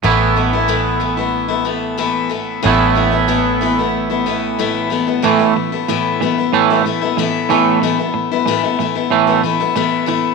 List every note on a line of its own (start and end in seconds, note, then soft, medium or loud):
0.03 2.61 A1 medium
0.03 0.36 A2 medium
0.03 0.35 E3 medium
0.03 0.35 A3 medium
0.03 0.36 B3 medium
0.03 0.36 E4 medium
0.36 0.52 E3 soft
0.36 0.53 A3 medium
0.36 0.52 B3 medium
0.36 0.52 E4 medium
0.53 0.67 A3 soft
0.53 0.68 B3 soft
0.53 0.68 E4 medium
0.68 1.01 A2 medium
0.68 0.99 E3 medium
0.68 1.00 A3 medium
0.68 1.00 B3 medium
0.68 1.00 E4 medium
1.00 1.17 E3 medium
1.00 1.18 A3 medium
1.00 1.17 B3 medium
1.00 1.16 E4 medium
1.17 1.49 A3 soft
1.17 1.48 B3 soft
1.17 1.47 E4 soft
1.48 1.64 A3 soft
1.48 1.65 B3 soft
1.48 1.65 E4 medium
1.65 1.97 E3 medium
1.65 1.97 A3 medium
1.65 1.98 B3 medium
1.65 1.97 E4 medium
1.98 2.31 A2 medium
1.98 2.28 E3 medium
1.98 2.29 A3 medium
1.98 2.30 B3 medium
1.98 2.31 E4 medium
2.29 2.61 E3 medium
2.29 2.61 A3 medium
2.29 2.62 B3 medium
2.29 2.63 E4 medium
2.63 5.20 A1 medium
2.63 2.96 A2 medium
2.63 2.94 E3 medium
2.63 2.95 A3 medium
2.63 2.96 B3 medium
2.63 2.96 E4 medium
2.95 3.13 E3 medium
2.95 3.11 A3 medium
2.95 3.11 B3 medium
2.95 3.10 E4 medium
3.11 3.27 A3 soft
3.11 3.27 B3 medium
3.11 3.28 E4 medium
3.28 3.61 A2 medium
3.28 3.60 E3 medium
3.28 3.61 A3 medium
3.28 3.61 B3 medium
3.28 3.61 E4 medium
3.61 3.78 E3 medium
3.61 3.78 A3 medium
3.61 3.78 B3 medium
3.61 3.77 E4 medium
3.78 4.10 A3 soft
3.78 4.10 B3 soft
3.78 4.09 E4 medium
4.10 4.25 A3 soft
4.10 4.26 B3 medium
4.10 4.26 E4 medium
4.26 4.58 E3 medium
4.26 4.58 A3 medium
4.26 4.58 B3 medium
4.26 4.58 E4 medium
4.59 4.91 A2 medium
4.59 4.89 E3 medium
4.59 4.90 A3 medium
4.59 4.91 B3 medium
4.59 4.91 E4 medium
4.90 5.07 E3 medium
4.90 5.07 A3 medium
4.90 5.06 B3 medium
4.90 5.05 E4 medium
5.07 5.23 A3 soft
5.07 5.22 B3 soft
5.07 5.23 E4 medium
5.22 5.39 A2 medium
5.22 5.40 E3 medium
5.22 5.38 A3 medium
5.22 5.38 B3 medium
5.22 5.38 E4 medium
5.39 5.72 A3 soft
5.39 5.71 B3 soft
5.39 5.71 E4 medium
5.56 5.85 A2 medium
5.56 5.85 E3 medium
5.72 5.88 A3 soft
5.72 5.88 B3 medium
5.72 5.88 E4 medium
5.88 6.21 A2 medium
5.88 6.20 E3 medium
5.88 6.21 A3 medium
5.88 6.21 B3 medium
5.88 6.21 E4 loud
6.20 6.50 A2 medium
6.20 6.37 E3 medium
6.20 6.38 A3 medium
6.20 6.38 B3 medium
6.20 6.37 E4 medium
6.38 6.71 A3 soft
6.38 6.70 B3 soft
6.38 6.69 E4 medium
6.53 6.83 A2 medium
6.53 6.83 E3 medium
6.53 6.84 A3 medium
6.70 6.85 A3 soft
6.70 6.86 B3 soft
6.70 6.86 E4 medium
6.85 7.14 A2 medium
6.85 7.01 E3 medium
6.85 7.02 A3 medium
6.85 7.01 B3 medium
6.85 7.00 E4 medium
7.01 7.18 A3 soft
7.01 7.18 B3 soft
7.01 7.17 E4 medium
7.18 7.50 A2 medium
7.18 7.48 E3 medium
7.18 7.49 A3 medium
7.18 7.50 B3 medium
7.18 7.50 E4 medium
7.49 7.80 A2 medium
7.49 7.82 E3 medium
7.49 7.82 A3 medium
7.49 7.83 B3 medium
7.49 7.83 E4 medium
7.83 7.99 A2 medium
7.83 7.99 E3 medium
7.83 7.99 A3 medium
7.83 7.98 B3 medium
7.83 7.97 E4 medium
7.98 8.31 A3 soft
7.98 8.31 B3 soft
7.98 8.30 E4 medium
8.14 8.43 A2 medium
8.14 8.43 E3 medium
8.31 8.47 A3 soft
8.31 8.47 B3 medium
8.31 8.47 E4 medium
8.47 8.63 A2 medium
8.47 8.63 E3 medium
8.47 8.63 A3 medium
8.47 8.63 B3 medium
8.47 8.62 E4 medium
8.63 8.79 A3 soft
8.63 8.79 B3 soft
8.63 8.79 E4 medium
8.79 9.08 A2 medium
8.79 8.95 E3 medium
8.79 8.96 A3 medium
8.79 8.95 B3 medium
8.79 8.94 E4 medium
8.95 9.28 A3 soft
8.95 9.27 B3 soft
8.95 9.26 E4 medium
9.10 9.41 A2 medium
9.10 9.41 E3 medium
9.10 9.42 A3 loud
9.27 9.43 A3 soft
9.27 9.44 B3 medium
9.27 9.43 E4 medium
9.43 9.72 A2 medium
9.43 9.59 E3 medium
9.43 9.60 A3 medium
9.43 9.59 B3 medium
9.43 9.59 E4 medium
9.60 9.75 A3 soft
9.60 9.76 B3 medium
9.60 9.76 E4 medium
9.76 10.08 A2 medium
9.76 10.05 E3 medium
9.76 10.06 A3 medium
9.76 10.07 B3 medium
9.76 10.07 E4 medium
10.06 10.35 A2 medium
10.06 10.35 E3 medium
10.06 10.35 A3 medium
10.06 10.35 B3 medium
10.06 10.35 E4 medium